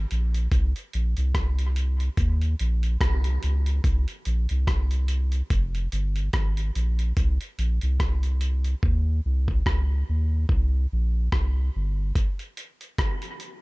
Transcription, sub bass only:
0.11 0.48 A#1 loud
0.53 0.73 C2 loud
0.94 1.15 A#1 medium
1.17 1.33 C2 medium
1.35 2.09 C2 medium
2.18 2.55 D#2 loud
2.60 2.97 A#1 loud
3.02 3.38 C2 medium
3.44 3.80 C#2 medium
3.85 4.05 C2 loud
4.26 4.47 A#1 loud
4.51 4.66 C2 medium
4.68 5.42 C2 medium
5.51 5.88 F1 loud
5.92 6.29 G1 loud
6.34 6.71 G#1 medium
6.75 7.12 A#1 loud
7.17 7.38 C2 loud
7.58 7.79 A#1 loud
7.83 7.98 C2 medium
8.01 8.75 C2 medium
8.84 9.21 D#2 loud
9.25 9.62 C2 medium
9.67 10.04 C#2 medium
10.09 10.46 D#2 medium
10.50 10.87 C2 loud
10.92 11.29 A#1 loud
11.33 11.70 C2 medium
11.76 12.12 G1 loud

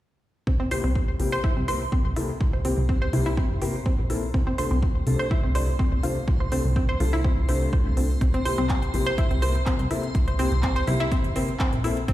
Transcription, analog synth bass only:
0.47 0.57 C2 medium
0.84 1.16 C2 medium
1.20 1.30 A#1 medium
1.57 1.88 C2 medium
2.05 2.14 C2 loud
2.41 2.73 C2 medium
2.78 3.09 C2 loud
3.13 3.46 C2 loud
3.50 3.82 G1 medium
3.98 4.30 A#1 medium
4.34 4.44 C2 loud
4.71 5.03 C2 medium
5.07 5.17 C2 medium
5.44 5.75 C2 loud
5.92 6.01 C2 loud
6.28 6.60 C2 medium
6.65 6.96 C2 loud
7.00 7.33 C2 loud
7.37 7.69 C2 medium
7.86 8.17 C2 loud
8.21 8.31 C2 loud
8.58 8.90 C2 medium
8.94 9.04 A#1 medium
9.31 9.63 C2 loud
9.79 9.88 C2 loud
10.15 10.47 C2 medium
10.52 10.83 C2 loud
10.87 11.20 C2 loud
11.24 11.56 G1 medium
11.73 12.04 A#1 medium
12.08 12.13 C2 loud

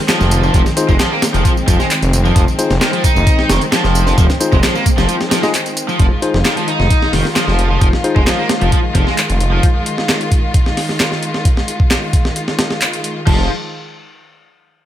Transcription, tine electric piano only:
0.77 0.92 D#4 medium
0.77 0.92 F4 medium
0.77 0.92 G#4 medium
0.77 0.92 C5 medium
2.59 2.74 D#4 medium
2.59 2.74 F4 medium
2.59 2.74 G#4 medium
2.59 2.74 C5 medium
4.41 4.56 D#4 medium
4.41 4.56 F4 medium
4.41 4.56 G#4 medium
4.41 4.56 C5 medium
5.43 5.52 D#4 medium
5.43 5.52 F4 medium
5.43 5.52 G#4 medium
5.43 5.52 D#5 loud
6.22 6.38 D#4 medium
6.22 6.38 F4 medium
6.22 6.38 G#4 medium
6.22 6.38 C5 medium
8.04 8.20 D#4 medium
8.04 8.20 F4 medium
8.04 8.20 G#4 medium
8.04 8.20 C5 medium

